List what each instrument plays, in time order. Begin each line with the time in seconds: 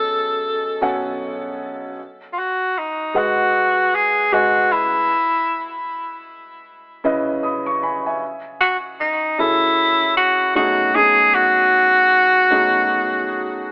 Already playing: upright piano B2 F#3 C#4 G#4 A4 D#5 G#5, tenor saxophone A4
0.81 upright piano B2 F#3 C#4 A4 F#5 G#5
2.33 tenor saxophone F4
2.39 tenor saxophone F#4
2.78 tenor saxophone D#4
3.14 upright piano G#3 G#4 B4 D#5 F#5, tenor saxophone F#4
3.95 tenor saxophone G#4
4.32 upright piano G#3 G#4 B4 D#5 G#5, tenor saxophone F#4
4.72 tenor saxophone E4
7.04 upright piano C#3 C#4 E4 B4 D#5
7.43 upright piano B5 D#6
7.66 upright piano C#6
7.83 upright piano G#5 B5
8.06 upright piano E5 G#5
8.61 tenor saxophone F#4
9.01 tenor saxophone D#4
9.39 upright piano F#3 C#4 E4 G#4 A4, tenor saxophone E4
10.17 tenor saxophone F#4
10.55 upright piano B2 F#3 A3 C#4 D#4 G#4, tenor saxophone F#4
10.94 upright piano B2 F#3 A3 C#4 D#4 G#4, tenor saxophone G#4
11.35 tenor saxophone F#4
12.50 upright piano B2 F#3 A3 C#4 D#4 G#4